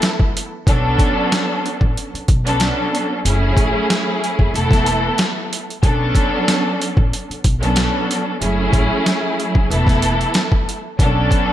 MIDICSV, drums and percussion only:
0, 0, Header, 1, 2, 480
1, 0, Start_track
1, 0, Tempo, 645161
1, 498, Time_signature, 4, 2, 24, 8
1, 8577, End_track
2, 0, Start_track
2, 0, Title_t, "Drums"
2, 15, Note_on_c, 9, 42, 91
2, 22, Note_on_c, 9, 38, 117
2, 89, Note_off_c, 9, 42, 0
2, 96, Note_off_c, 9, 38, 0
2, 146, Note_on_c, 9, 36, 95
2, 220, Note_off_c, 9, 36, 0
2, 273, Note_on_c, 9, 42, 79
2, 348, Note_off_c, 9, 42, 0
2, 497, Note_on_c, 9, 36, 120
2, 503, Note_on_c, 9, 42, 83
2, 572, Note_off_c, 9, 36, 0
2, 577, Note_off_c, 9, 42, 0
2, 734, Note_on_c, 9, 36, 96
2, 740, Note_on_c, 9, 42, 76
2, 808, Note_off_c, 9, 36, 0
2, 814, Note_off_c, 9, 42, 0
2, 983, Note_on_c, 9, 38, 124
2, 984, Note_on_c, 9, 42, 92
2, 1058, Note_off_c, 9, 38, 0
2, 1058, Note_off_c, 9, 42, 0
2, 1232, Note_on_c, 9, 42, 67
2, 1307, Note_off_c, 9, 42, 0
2, 1346, Note_on_c, 9, 36, 92
2, 1421, Note_off_c, 9, 36, 0
2, 1469, Note_on_c, 9, 42, 85
2, 1543, Note_off_c, 9, 42, 0
2, 1601, Note_on_c, 9, 42, 55
2, 1675, Note_off_c, 9, 42, 0
2, 1698, Note_on_c, 9, 42, 72
2, 1700, Note_on_c, 9, 36, 99
2, 1772, Note_off_c, 9, 42, 0
2, 1774, Note_off_c, 9, 36, 0
2, 1836, Note_on_c, 9, 42, 52
2, 1910, Note_off_c, 9, 42, 0
2, 1934, Note_on_c, 9, 42, 91
2, 1941, Note_on_c, 9, 38, 118
2, 2008, Note_off_c, 9, 42, 0
2, 2015, Note_off_c, 9, 38, 0
2, 2192, Note_on_c, 9, 42, 78
2, 2267, Note_off_c, 9, 42, 0
2, 2422, Note_on_c, 9, 42, 84
2, 2497, Note_off_c, 9, 42, 0
2, 2654, Note_on_c, 9, 36, 93
2, 2660, Note_on_c, 9, 42, 74
2, 2728, Note_off_c, 9, 36, 0
2, 2734, Note_off_c, 9, 42, 0
2, 2903, Note_on_c, 9, 38, 121
2, 2903, Note_on_c, 9, 42, 92
2, 2978, Note_off_c, 9, 38, 0
2, 2978, Note_off_c, 9, 42, 0
2, 3152, Note_on_c, 9, 42, 67
2, 3227, Note_off_c, 9, 42, 0
2, 3266, Note_on_c, 9, 36, 91
2, 3341, Note_off_c, 9, 36, 0
2, 3389, Note_on_c, 9, 42, 82
2, 3463, Note_off_c, 9, 42, 0
2, 3502, Note_on_c, 9, 36, 100
2, 3511, Note_on_c, 9, 38, 36
2, 3521, Note_on_c, 9, 42, 53
2, 3576, Note_off_c, 9, 36, 0
2, 3586, Note_off_c, 9, 38, 0
2, 3595, Note_off_c, 9, 42, 0
2, 3619, Note_on_c, 9, 42, 70
2, 3693, Note_off_c, 9, 42, 0
2, 3854, Note_on_c, 9, 42, 92
2, 3862, Note_on_c, 9, 38, 115
2, 3929, Note_off_c, 9, 42, 0
2, 3936, Note_off_c, 9, 38, 0
2, 4112, Note_on_c, 9, 42, 77
2, 4186, Note_off_c, 9, 42, 0
2, 4244, Note_on_c, 9, 42, 49
2, 4318, Note_off_c, 9, 42, 0
2, 4336, Note_on_c, 9, 36, 117
2, 4341, Note_on_c, 9, 42, 83
2, 4411, Note_off_c, 9, 36, 0
2, 4416, Note_off_c, 9, 42, 0
2, 4573, Note_on_c, 9, 36, 92
2, 4578, Note_on_c, 9, 42, 76
2, 4647, Note_off_c, 9, 36, 0
2, 4653, Note_off_c, 9, 42, 0
2, 4822, Note_on_c, 9, 38, 122
2, 4822, Note_on_c, 9, 42, 90
2, 4896, Note_off_c, 9, 38, 0
2, 4896, Note_off_c, 9, 42, 0
2, 5071, Note_on_c, 9, 42, 66
2, 5145, Note_off_c, 9, 42, 0
2, 5185, Note_on_c, 9, 36, 96
2, 5260, Note_off_c, 9, 36, 0
2, 5308, Note_on_c, 9, 42, 85
2, 5382, Note_off_c, 9, 42, 0
2, 5440, Note_on_c, 9, 42, 52
2, 5515, Note_off_c, 9, 42, 0
2, 5537, Note_on_c, 9, 42, 73
2, 5539, Note_on_c, 9, 36, 98
2, 5612, Note_off_c, 9, 42, 0
2, 5613, Note_off_c, 9, 36, 0
2, 5675, Note_on_c, 9, 42, 53
2, 5749, Note_off_c, 9, 42, 0
2, 5773, Note_on_c, 9, 42, 95
2, 5780, Note_on_c, 9, 38, 112
2, 5847, Note_off_c, 9, 42, 0
2, 5854, Note_off_c, 9, 38, 0
2, 6032, Note_on_c, 9, 42, 77
2, 6106, Note_off_c, 9, 42, 0
2, 6262, Note_on_c, 9, 42, 82
2, 6336, Note_off_c, 9, 42, 0
2, 6493, Note_on_c, 9, 36, 98
2, 6498, Note_on_c, 9, 42, 73
2, 6568, Note_off_c, 9, 36, 0
2, 6573, Note_off_c, 9, 42, 0
2, 6743, Note_on_c, 9, 38, 121
2, 6743, Note_on_c, 9, 42, 94
2, 6817, Note_off_c, 9, 38, 0
2, 6817, Note_off_c, 9, 42, 0
2, 6991, Note_on_c, 9, 42, 64
2, 7065, Note_off_c, 9, 42, 0
2, 7105, Note_on_c, 9, 36, 94
2, 7180, Note_off_c, 9, 36, 0
2, 7228, Note_on_c, 9, 42, 83
2, 7302, Note_off_c, 9, 42, 0
2, 7341, Note_on_c, 9, 36, 102
2, 7350, Note_on_c, 9, 38, 37
2, 7359, Note_on_c, 9, 42, 54
2, 7415, Note_off_c, 9, 36, 0
2, 7424, Note_off_c, 9, 38, 0
2, 7434, Note_off_c, 9, 42, 0
2, 7457, Note_on_c, 9, 42, 74
2, 7532, Note_off_c, 9, 42, 0
2, 7595, Note_on_c, 9, 42, 52
2, 7669, Note_off_c, 9, 42, 0
2, 7693, Note_on_c, 9, 42, 95
2, 7701, Note_on_c, 9, 38, 119
2, 7768, Note_off_c, 9, 42, 0
2, 7775, Note_off_c, 9, 38, 0
2, 7825, Note_on_c, 9, 36, 98
2, 7899, Note_off_c, 9, 36, 0
2, 7952, Note_on_c, 9, 42, 77
2, 8026, Note_off_c, 9, 42, 0
2, 8176, Note_on_c, 9, 36, 112
2, 8182, Note_on_c, 9, 42, 83
2, 8251, Note_off_c, 9, 36, 0
2, 8256, Note_off_c, 9, 42, 0
2, 8413, Note_on_c, 9, 36, 93
2, 8420, Note_on_c, 9, 42, 74
2, 8488, Note_off_c, 9, 36, 0
2, 8494, Note_off_c, 9, 42, 0
2, 8577, End_track
0, 0, End_of_file